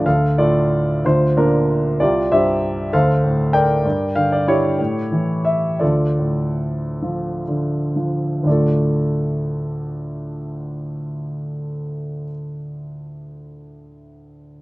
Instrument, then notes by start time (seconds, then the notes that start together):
grand piano
0.06 D2 A4 F5
0.38 A2 F4 A4 D5
1.05 D2 F4 C5
1.37 A#2 D4 F4 A#4
2.00 C2 F4 G4 D5
2.32 G2 G4 C5 E5
2.93 D2 A4 C5 F5
3.24 A2
3.53 A#4 D5 G5
3.85 G2
4.16 D3 F5
4.32 D5
4.48 E4 G4 C#5
4.79 A2
5.12 E3
5.45 E5
5.79 D2 F4 A4 D5
6.19 A2
7.02 F3
7.48 D3
7.96 F3
8.43 D2 A2 D3 D5
8.48 A3 F4 A4